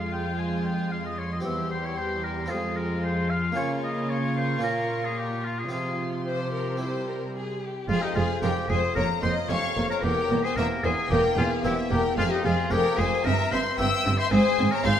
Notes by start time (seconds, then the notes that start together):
Already playing: F2 G#3 C4 F4 G#4 F5 C6
0.12 G5
0.38 G#5
0.65 G5
0.91 F5
1.05 D#5
1.18 C#5
1.33 D#5
1.40 C4 G4
1.45 E2 G3 G4 E5
1.71 C5
1.85 C#5
1.97 C5
2.23 A#4
2.46 C4 F4
2.50 F2 G#3 F4 G#4
2.77 A#4
3.04 C5
3.30 F5
3.52 A#3 C#4 F4
3.56 C#3 A#3 C#5 C#6
3.83 D#5
4.10 C#5
4.36 C5
4.59 A#3 C#4 F4
4.63 A#2 A#4
5.05 G#4
5.17 G4
5.44 F4
5.59 G#4
5.69 C3 F3 C4 F4 G#4 C6
6.25 G4 C5
6.53 A#4
6.77 G3 C4 E4 C5
7.08 A#4
7.35 G#4
7.62 G4
7.89 F1 F2 G#3 F4 G#4 F5
8.02 D#4 G4 D#5
8.15 F1 F2 G#3 F4 G#4 F5
8.42 F1 F2 G#3 C4 F4 G4 A#4 G5
8.69 F1 F2 G#3 G#4 C5 G#5
8.95 F1 F2 A#3 A#4 C#5 A#5
9.22 F1 F2 A#3 C5 D#5 C6
9.49 F1 F2 A#3 C#4 G4 C#5 F5 C#6
9.76 F1 F2 A#3
9.90 A#4 C#5 A#5
10.03 E1 E2 A#3 G4 A#4 G5
10.30 E1 E2 A#3
10.43 G#4 C5 G#5
10.57 E1 E2 A#3 C4 G4 A#4 E5 A#5
10.84 E1 E2 A#3 G#4 C5 G#5
11.10 E1 E2 A#3 G4 A#4 G5
11.38 E1 E2 A#3 F4 G#4 F5
11.64 E1 E2 A#3 C4 E4 G4 E5
11.91 E1 E2 A#3 G4 A#4 G5
12.17 F1 F2 G#3 F4 G#4 F5
12.30 D#4 G4 D#5
12.44 F1 F2 G#3 F4 G#4 F5
12.71 F1 F2 G#3 C4 G4 G#4 A#4 G5
12.98 F1 F2 G#3 G#4 C5 G#5
13.25 G1 G2 C4 A#4 E5 A#5
13.51 G1 G2 C4 C5 E5 C6
13.78 G1 G2 C4 G4 E5 G5 E6
14.05 G1 G2 C4
14.18 C5 E5 C6
14.31 G#1 G#2 C4 G#4 C5 G#5
14.58 G#1 G#2 C4
14.71 A#4 C#5 A#5
14.84 G#1 G#2 G#3 C4 F4 C5 F5 C6